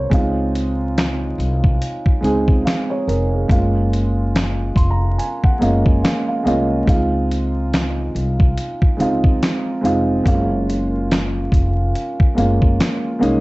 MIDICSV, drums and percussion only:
0, 0, Header, 1, 2, 480
1, 0, Start_track
1, 0, Key_signature, -5, "major"
1, 0, Tempo, 845070
1, 65, Time_signature, 4, 2, 24, 8
1, 7613, End_track
2, 0, Start_track
2, 0, Title_t, "Drums"
2, 65, Note_on_c, 9, 36, 113
2, 73, Note_on_c, 9, 42, 92
2, 122, Note_off_c, 9, 36, 0
2, 130, Note_off_c, 9, 42, 0
2, 315, Note_on_c, 9, 42, 72
2, 372, Note_off_c, 9, 42, 0
2, 555, Note_on_c, 9, 42, 76
2, 557, Note_on_c, 9, 38, 121
2, 563, Note_on_c, 9, 26, 100
2, 612, Note_off_c, 9, 42, 0
2, 613, Note_off_c, 9, 38, 0
2, 620, Note_off_c, 9, 26, 0
2, 794, Note_on_c, 9, 42, 55
2, 851, Note_off_c, 9, 42, 0
2, 930, Note_on_c, 9, 36, 101
2, 987, Note_off_c, 9, 36, 0
2, 1032, Note_on_c, 9, 42, 90
2, 1089, Note_off_c, 9, 42, 0
2, 1169, Note_on_c, 9, 36, 88
2, 1226, Note_off_c, 9, 36, 0
2, 1274, Note_on_c, 9, 42, 57
2, 1331, Note_off_c, 9, 42, 0
2, 1408, Note_on_c, 9, 36, 95
2, 1465, Note_off_c, 9, 36, 0
2, 1516, Note_on_c, 9, 42, 93
2, 1518, Note_on_c, 9, 38, 115
2, 1524, Note_on_c, 9, 26, 85
2, 1573, Note_off_c, 9, 42, 0
2, 1574, Note_off_c, 9, 38, 0
2, 1581, Note_off_c, 9, 26, 0
2, 1755, Note_on_c, 9, 42, 59
2, 1812, Note_off_c, 9, 42, 0
2, 1985, Note_on_c, 9, 36, 114
2, 1993, Note_on_c, 9, 42, 98
2, 2042, Note_off_c, 9, 36, 0
2, 2050, Note_off_c, 9, 42, 0
2, 2234, Note_on_c, 9, 42, 68
2, 2291, Note_off_c, 9, 42, 0
2, 2474, Note_on_c, 9, 42, 77
2, 2476, Note_on_c, 9, 38, 106
2, 2483, Note_on_c, 9, 26, 91
2, 2531, Note_off_c, 9, 42, 0
2, 2533, Note_off_c, 9, 38, 0
2, 2539, Note_off_c, 9, 26, 0
2, 2702, Note_on_c, 9, 36, 97
2, 2713, Note_on_c, 9, 42, 57
2, 2759, Note_off_c, 9, 36, 0
2, 2770, Note_off_c, 9, 42, 0
2, 2950, Note_on_c, 9, 42, 76
2, 3007, Note_off_c, 9, 42, 0
2, 3088, Note_on_c, 9, 36, 93
2, 3145, Note_off_c, 9, 36, 0
2, 3192, Note_on_c, 9, 42, 61
2, 3249, Note_off_c, 9, 42, 0
2, 3327, Note_on_c, 9, 36, 96
2, 3384, Note_off_c, 9, 36, 0
2, 3434, Note_on_c, 9, 42, 92
2, 3436, Note_on_c, 9, 38, 105
2, 3442, Note_on_c, 9, 26, 79
2, 3491, Note_off_c, 9, 42, 0
2, 3492, Note_off_c, 9, 38, 0
2, 3499, Note_off_c, 9, 26, 0
2, 3674, Note_on_c, 9, 42, 57
2, 3731, Note_off_c, 9, 42, 0
2, 3905, Note_on_c, 9, 36, 123
2, 3913, Note_on_c, 9, 42, 84
2, 3962, Note_off_c, 9, 36, 0
2, 3969, Note_off_c, 9, 42, 0
2, 4155, Note_on_c, 9, 42, 65
2, 4211, Note_off_c, 9, 42, 0
2, 4394, Note_on_c, 9, 42, 76
2, 4395, Note_on_c, 9, 38, 118
2, 4402, Note_on_c, 9, 26, 95
2, 4450, Note_off_c, 9, 42, 0
2, 4452, Note_off_c, 9, 38, 0
2, 4459, Note_off_c, 9, 26, 0
2, 4634, Note_on_c, 9, 42, 52
2, 4691, Note_off_c, 9, 42, 0
2, 4770, Note_on_c, 9, 36, 100
2, 4827, Note_off_c, 9, 36, 0
2, 4870, Note_on_c, 9, 42, 79
2, 4927, Note_off_c, 9, 42, 0
2, 5009, Note_on_c, 9, 36, 90
2, 5065, Note_off_c, 9, 36, 0
2, 5112, Note_on_c, 9, 42, 61
2, 5169, Note_off_c, 9, 42, 0
2, 5248, Note_on_c, 9, 36, 101
2, 5305, Note_off_c, 9, 36, 0
2, 5354, Note_on_c, 9, 42, 91
2, 5356, Note_on_c, 9, 38, 118
2, 5362, Note_on_c, 9, 26, 93
2, 5411, Note_off_c, 9, 42, 0
2, 5412, Note_off_c, 9, 38, 0
2, 5419, Note_off_c, 9, 26, 0
2, 5594, Note_on_c, 9, 42, 66
2, 5651, Note_off_c, 9, 42, 0
2, 5825, Note_on_c, 9, 36, 107
2, 5832, Note_on_c, 9, 42, 95
2, 5882, Note_off_c, 9, 36, 0
2, 5889, Note_off_c, 9, 42, 0
2, 6075, Note_on_c, 9, 42, 67
2, 6132, Note_off_c, 9, 42, 0
2, 6313, Note_on_c, 9, 42, 83
2, 6315, Note_on_c, 9, 38, 124
2, 6321, Note_on_c, 9, 26, 95
2, 6370, Note_off_c, 9, 42, 0
2, 6371, Note_off_c, 9, 38, 0
2, 6378, Note_off_c, 9, 26, 0
2, 6543, Note_on_c, 9, 36, 90
2, 6553, Note_on_c, 9, 42, 54
2, 6600, Note_off_c, 9, 36, 0
2, 6610, Note_off_c, 9, 42, 0
2, 6790, Note_on_c, 9, 42, 85
2, 6847, Note_off_c, 9, 42, 0
2, 6929, Note_on_c, 9, 36, 101
2, 6986, Note_off_c, 9, 36, 0
2, 7031, Note_on_c, 9, 42, 60
2, 7088, Note_off_c, 9, 42, 0
2, 7167, Note_on_c, 9, 36, 93
2, 7224, Note_off_c, 9, 36, 0
2, 7273, Note_on_c, 9, 42, 97
2, 7274, Note_on_c, 9, 38, 109
2, 7280, Note_on_c, 9, 26, 93
2, 7329, Note_off_c, 9, 42, 0
2, 7331, Note_off_c, 9, 38, 0
2, 7337, Note_off_c, 9, 26, 0
2, 7513, Note_on_c, 9, 42, 53
2, 7570, Note_off_c, 9, 42, 0
2, 7613, End_track
0, 0, End_of_file